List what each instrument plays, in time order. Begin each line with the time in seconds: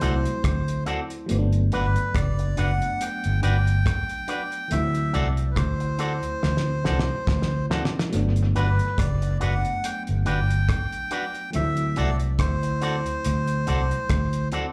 Already playing: melodica C5
0.00 fingered electric bass C2, fm electric piano F#3 A3 C4 E4, clean electric guitar C4 F#4 A4 D5, closed hi-hat
0.25 closed hi-hat
0.44 fingered electric bass D2, kick, cross-stick, closed hi-hat
0.68 closed hi-hat
0.86 clean electric guitar C4 F#4 A4 D5, closed hi-hat
1.10 closed hi-hat
1.26 fm electric piano F#3 A3 B3, closed hi-hat
1.31 fingered electric bass G1, fm electric piano C4
1.39 fm electric piano D4
1.53 closed hi-hat
1.72 fingered electric bass G1, clean electric guitar D4 F#4 B4 D5, melodica B4, closed hi-hat
1.96 closed hi-hat
2.15 fingered electric bass F#1, melodica D5, kick, cross-stick, closed hi-hat
2.39 muted clean electric guitar stroke, closed hi-hat
2.57 fingered electric bass F#1, clean electric guitar D4 F#4 B4 D5, melodica F#5, closed hi-hat
2.82 closed hi-hat
3.01 melodica G5, closed hi-hat
3.24 fingered electric bass G1, closed hi-hat
3.42 fingered electric bass G1, clean electric guitar D4 F#4 B4 D5, melodica G5, closed hi-hat
3.67 closed hi-hat
3.86 kick, cross-stick, closed hi-hat
4.09 closed hi-hat
4.28 clean electric guitar D4 F#4 B4 D5, closed hi-hat
4.52 closed hi-hat
4.68 fm electric piano E3 A3 C4, melodica E5, closed hi-hat
4.72 fingered electric bass D2, fm electric piano F#3 E4
4.95 closed hi-hat
5.13 fingered electric bass C2, clean electric guitar C4 F#4 A4 D5, melodica D5, closed hi-hat
5.37 closed hi-hat
5.51 melodica B4
5.56 fingered electric bass D2, melodica C5, kick, cross-stick, closed hi-hat
5.80 muted clean electric guitar stroke, closed hi-hat
5.98 clean electric guitar C4 F#4 A4 D5, closed hi-hat
6.23 closed hi-hat
6.43 fingered electric bass D2, snare
6.57 snare
6.84 fingered electric bass C2, clean electric guitar C4 F#4 A4 D5, snare
6.99 snare
7.27 fingered electric bass D2, kick, snare
7.42 snare
7.70 clean electric guitar C4 F#4 A4 D5, snare
7.85 snare
7.99 snare
8.10 fm electric piano F#3 A3 B3, closed hi-hat
8.14 fingered electric bass G1, fm electric piano D4
8.36 closed hi-hat
8.55 fingered electric bass G1, clean electric guitar D4 F#4 B4 D5, melodica B4, closed hi-hat
8.79 closed hi-hat
8.98 fingered electric bass F#1, melodica D5, kick, cross-stick, closed hi-hat
9.21 muted clean electric guitar stroke, closed hi-hat
9.40 fingered electric bass F#1, clean electric guitar D4 F#4 B4 D5, melodica F#5, closed hi-hat
9.65 closed hi-hat
9.84 melodica G5, closed hi-hat
10.07 fingered electric bass G1, closed hi-hat
10.26 fingered electric bass G1, clean electric guitar D4 F#4 B4 D5, melodica G5, closed hi-hat
10.50 closed hi-hat
10.69 kick, cross-stick, closed hi-hat
10.92 closed hi-hat
11.11 clean electric guitar D4 F#4 B4 D5, closed hi-hat
11.35 closed hi-hat
11.50 fm electric piano F3 A3, closed hi-hat
11.55 fingered electric bass D2, fm electric piano F#3 C4 E4, melodica E5
11.77 closed hi-hat
11.96 fingered electric bass C2, clean electric guitar C4 F#4 A4 D5, melodica D5, closed hi-hat
12.20 closed hi-hat
12.39 fingered electric bass D2, melodica C5, kick, cross-stick, closed hi-hat
12.63 muted clean electric guitar stroke, closed hi-hat
12.81 clean electric guitar C4 F#4 A4 D5, closed hi-hat
13.06 closed hi-hat
13.24 fingered electric bass D2, closed hi-hat
13.47 closed hi-hat
13.67 fingered electric bass C2, clean electric guitar C4 F#4 A4 D5, closed hi-hat
13.91 closed hi-hat
14.09 fingered electric bass D2, kick, cross-stick, closed hi-hat
14.33 closed hi-hat
14.52 clean electric guitar C4 F#4 A4 D5, closed hi-hat